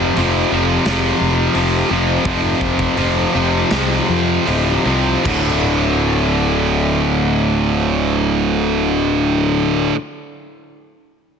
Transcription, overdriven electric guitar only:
0.00 0.16 F2 medium
0.00 0.16 C3 medium
0.00 0.18 F3 loud
0.16 0.51 F2 medium
0.16 0.50 C3 medium
0.16 0.52 F3 medium
0.51 0.84 F2 medium
0.51 0.85 C3 medium
0.51 0.86 F3 medium
0.85 1.53 F2 medium
0.85 1.54 C3 loud
0.85 1.55 F3 loud
1.54 1.89 F2 medium
1.54 1.89 C3 medium
1.54 1.91 F3 medium
1.90 2.24 F2 medium
1.90 2.24 C3 medium
1.90 2.25 F3 medium
2.25 2.96 F2 medium
2.25 2.97 C3 medium
2.25 2.97 F3 medium
2.97 3.32 F2 medium
2.97 3.33 C3 medium
2.97 3.34 F3 medium
3.34 3.69 F2 medium
3.34 3.70 C3 medium
3.34 3.70 F3 medium
3.70 4.45 F2 medium
3.70 4.45 C3 medium
3.70 4.46 F3 medium
4.46 4.84 F2 medium
4.46 4.84 C3 medium
4.46 4.85 F3 medium
4.85 5.23 F2 medium
4.85 5.23 C3 medium
4.85 5.23 F3 medium
5.24 9.93 D2 medium
5.24 9.95 A2 medium
5.28 9.95 D3 medium

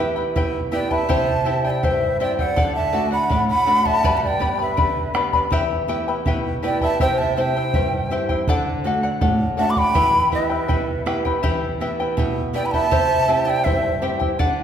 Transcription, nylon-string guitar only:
0.00 0.34 E3 medium
0.00 0.58 B3 soft
0.00 0.58 E4 soft
0.00 0.58 G4 medium
0.36 1.07 B2 medium
0.72 1.02 B3 medium
0.72 1.02 E4 soft
0.72 1.02 G4 medium
1.09 1.81 C3 medium
1.45 2.05 C4 medium
1.45 2.05 E4 soft
1.45 2.05 G4 medium
1.83 2.55 G2 medium
2.20 2.50 C4 medium
2.20 2.50 E4 soft
2.20 2.50 G4 medium
2.56 3.28 D3 medium
2.93 3.52 A3 medium
2.93 3.53 D4 soft
2.93 3.53 F#4 medium
3.29 4.02 A2 medium
3.66 3.96 A3 medium
3.66 3.97 D4 soft
3.66 3.97 F#4 medium
4.03 4.75 G2 medium
4.39 4.99 B3 medium
4.39 5.00 D4 soft
4.39 5.00 G4 medium
4.77 5.50 D3 medium
5.14 5.44 B3 medium
5.14 5.44 D4 soft
5.14 5.45 G4 medium
5.51 6.23 E2 medium
5.88 6.48 B3 medium
5.88 6.48 E4 soft
5.88 6.48 G4 medium
6.26 6.98 B2 medium
6.63 6.93 B3 soft
6.63 6.93 E4 soft
6.63 6.93 G4 medium
7.00 7.72 C3 medium
7.37 7.96 C4 medium
7.37 7.97 E4 soft
7.37 7.97 G4 medium
7.74 8.46 G2 medium
8.10 8.40 C4 soft
8.10 8.41 E4 medium
8.10 8.41 G4 medium
8.48 9.19 D3 medium
8.84 9.44 A3 medium
8.84 9.44 D4 soft
8.84 9.44 F#4 medium
9.22 9.93 A2 medium
9.58 9.88 A3 medium
9.58 9.88 D4 soft
9.58 9.89 F#4 medium
9.95 10.67 E3 medium
10.32 10.91 B3 soft
10.32 10.92 E4 soft
10.32 10.92 G4 medium
10.70 11.41 B2 medium
11.06 11.36 B3 soft
11.06 11.36 E4 soft
11.06 11.36 G4 medium
11.44 12.15 E3 medium
11.80 12.40 B3 soft
11.80 12.40 E4 soft
11.80 12.40 G4 medium
12.17 12.89 B2 medium
12.53 12.83 B3 medium
12.53 12.83 E4 soft
12.53 12.84 G4 medium
12.91 13.63 C3 medium
13.28 13.87 C4 medium
13.28 13.88 E4 soft
13.28 13.88 G4 medium
13.65 14.37 G2 medium
14.02 14.31 C4 medium
14.02 14.31 E4 soft
14.02 14.32 G4 medium
14.39 14.63 D3 medium

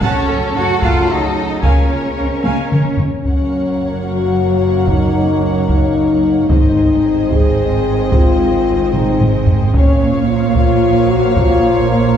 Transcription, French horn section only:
0.03 1.61 A3 medium
0.03 1.60 F#4 medium
1.63 2.14 A#3 soft
1.63 2.14 F4 soft
2.17 2.43 C4 soft
2.43 2.69 G#3 soft
2.43 2.97 C#4 soft
2.71 2.98 A#3 soft
2.98 3.21 C#4 soft
3.22 3.89 C#4 medium
4.06 4.86 F#4 medium
4.88 5.42 D#4 medium
5.42 5.69 C#4 medium
5.70 6.48 D#4 medium
6.49 7.29 D#4 medium
7.32 8.13 G#4 medium
8.13 8.92 F4 medium
8.93 9.21 D#4 medium
9.74 10.25 C#4 medium
10.27 10.54 F4 medium
10.55 11.08 F4 medium
11.09 11.36 F#4 medium
11.39 11.91 F4 medium
11.90 12.17 A#3 medium

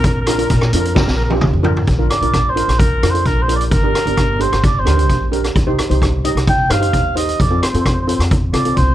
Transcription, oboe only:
0.06 0.12 A#4 medium
0.13 0.19 A#4 medium
0.21 0.26 A#4 medium
0.29 0.34 A#4 medium
0.36 0.42 A#4 soft
0.43 0.49 A#4 medium
0.50 0.56 A#4 medium
0.58 0.64 A#4 medium
0.65 0.71 A#4 soft
0.73 0.79 A#4 medium
0.80 0.86 A#4 medium
0.87 0.93 A#4 medium
0.95 1.01 A#4 medium
1.02 1.08 A#4 medium
1.10 1.15 A#4 medium
1.16 1.23 A#4 medium
1.24 1.31 A#4 medium
2.11 2.51 D5 medium
2.49 2.81 C5 medium
2.79 3.12 A#4 medium
3.10 3.28 C5 medium
3.27 3.44 A#4 medium
3.42 3.55 C5 medium
3.56 3.63 D5 medium
3.72 4.43 A#4 medium
4.41 4.64 C5 medium
4.65 4.81 D5 medium
4.79 5.25 C5 medium
6.49 6.73 G5 loud
6.71 7.17 F5 loud
7.17 7.42 D#5 medium
7.40 7.62 D5 medium
7.63 7.69 C5 medium
7.70 7.77 C5 soft
7.79 7.85 C5 medium
7.86 7.92 C5 medium
7.93 7.99 C5 soft
8.01 8.07 C5 medium
8.08 8.15 C5 medium
8.16 8.22 C5 medium
8.54 8.75 D5 medium
8.77 8.95 C5 medium

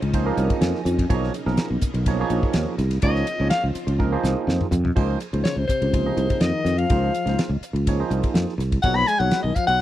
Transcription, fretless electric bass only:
0.02 0.30 C#2 medium
0.37 0.47 C2 medium
0.61 0.71 F2 medium
0.85 1.04 F2 medium
1.10 1.29 B1 loud
1.46 1.55 B1 medium
1.70 1.80 B1 medium
1.82 muted fretless electric bass stroke soft
1.94 2.22 B1 medium
2.30 2.40 A#1 medium
2.54 2.64 D#2 medium
2.78 2.97 C2 medium
3.03 3.22 C#2 loud
3.40 3.49 C#2 medium
3.63 3.73 C#2 medium
3.75 muted fretless electric bass stroke soft
3.87 4.15 C#2 medium
4.23 4.33 C2 medium
4.47 4.57 F2 medium
4.71 4.90 F2 medium
4.96 5.15 C#2 medium
5.33 5.42 C#2 medium
5.56 5.66 C#2 medium
5.82 6.09 C#2 medium
6.17 6.27 C2 medium
6.41 6.51 F2 medium
6.65 6.84 F2 medium
6.90 7.09 C#2 loud
7.26 7.35 C#2 medium
7.49 7.59 C#2 medium
7.61 muted fretless electric bass stroke soft
7.73 8.02 C#2 medium
8.10 8.20 C2 medium
8.34 8.44 F2 medium
8.58 8.77 C2 medium
8.84 9.02 B1 medium
9.20 9.29 B1 medium
9.44 9.53 B1 medium
9.68 9.81 B1 medium

